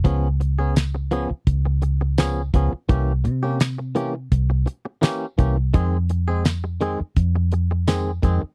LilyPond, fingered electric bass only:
\new Staff \with { instrumentName = "Fingered electric bass" } { \clef bass \time 4/4 \key f \minor \tempo 4 = 84 des,4.~ des,16 r16 des,4. des,16 r16 | c,8 c4. c,8 r4 c,8 | f,4.~ f,16 r16 f,4. f,16 r16 | }